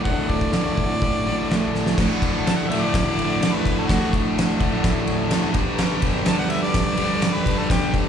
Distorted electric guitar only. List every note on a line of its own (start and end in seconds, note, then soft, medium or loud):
0.04 0.50 D2 medium
0.04 0.31 A2 loud
0.04 0.27 D3 loud
0.28 0.52 A2 medium
0.28 0.54 D3 medium
0.51 1.00 D2 medium
0.51 0.80 A2 loud
0.55 0.76 D3 loud
0.78 1.27 A2 medium
0.78 1.24 D3 medium
1.25 1.49 A2 medium
1.25 1.51 D3 medium
1.49 1.95 D2 medium
1.49 1.96 A2 medium
1.49 1.97 D3 medium
1.98 2.72 D2 loud
1.98 2.68 A2 loud
2.02 2.69 D3 loud
2.69 3.40 D2 medium
2.69 3.40 A2 medium
2.69 3.39 D3 medium
3.41 3.87 D2 medium
3.41 3.88 A2 medium
3.41 3.89 D3 medium
3.89 4.58 D2 medium
3.89 4.59 A2 loud
3.89 4.58 D3 loud
4.59 5.30 A2 medium
4.59 5.29 D3 loud
4.64 5.28 D2 medium
5.29 5.52 D2 medium
5.29 5.53 A2 medium
5.34 5.54 D3 medium
5.54 6.24 G2 medium
5.54 6.25 D3 loud
5.58 6.28 G3 medium
6.24 6.95 G2 medium
6.24 6.96 D3 medium
6.29 6.96 G3 medium
6.97 7.44 G2 medium
6.97 7.44 D3 medium
6.97 7.43 G3 medium
7.45 8.09 G2 medium
7.45 8.09 D3 medium
7.45 8.09 G3 loud